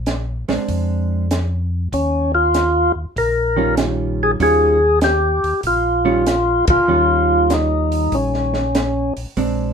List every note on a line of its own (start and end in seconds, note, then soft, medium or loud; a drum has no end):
0.00 0.44 A#1 medium
0.06 snare medium
0.06 closed hi-hat soft
0.49 0.59 A#1 soft
0.49 1.26 G#3 medium
0.49 1.27 C4 medium
0.49 1.27 D4 medium
0.49 snare medium
0.49 open hi-hat soft
0.68 1.88 F2 medium
0.68 kick soft
0.68 open hi-hat soft
1.31 snare medium
1.31 closed hi-hat medium
1.92 2.92 D#2 medium
1.92 2.32 C#4 medium
1.92 kick soft
1.92 open hi-hat soft
2.35 2.92 F4 loud
2.54 snare soft
2.54 closed hi-hat medium
2.95 3.05 D#2 soft
3.16 4.36 A#1 medium
3.16 3.75 A#4 medium
3.16 kick soft
3.16 open hi-hat soft
3.56 4.35 D#3 soft
3.56 4.36 G3 medium
3.56 4.36 C#4 medium
3.56 4.36 F4 medium
3.77 snare medium
3.77 closed hi-hat soft
4.23 4.31 G#4 loud
4.40 5.40 D#2 medium
4.40 4.78 D#3 medium
4.40 4.78 G3 medium
4.40 4.78 C#4 medium
4.40 4.78 F4 medium
4.40 4.99 G#4 loud
4.40 kick soft
4.40 open hi-hat soft
5.01 5.61 G4 medium
5.01 snare medium
5.01 closed hi-hat soft
5.43 5.53 D#2 soft
5.43 open hi-hat soft
5.63 6.64 A#1 medium
5.63 6.65 F4 medium
5.63 kick soft
5.63 open hi-hat soft
6.05 6.23 D#3 medium
6.05 6.24 G3 medium
6.05 6.24 C#4 medium
6.05 6.24 F4 medium
6.26 snare medium
6.26 closed hi-hat soft
6.67 6.78 A#1 soft
6.67 7.54 F4 loud
6.67 kick medium
6.67 ride medium
6.88 8.08 D#2 medium
6.88 8.62 D#3 medium
6.88 8.63 G3 medium
6.88 8.63 C#4 soft
6.88 8.63 F4 medium
7.50 8.16 D#4 medium
7.50 snare medium
7.50 closed hi-hat soft
7.92 open hi-hat soft
8.12 9.12 A#1 medium
8.12 9.14 C#4 medium
8.12 kick soft
8.12 open hi-hat soft
8.34 snare soft
8.54 snare soft
8.75 snare medium
8.75 closed hi-hat medium
9.16 9.26 A#1 soft
9.16 open hi-hat soft
9.37 9.73 A#1 medium
9.37 9.73 G#3 soft
9.37 9.73 C4 medium
9.37 9.73 D4 medium
9.37 kick soft
9.37 open hi-hat soft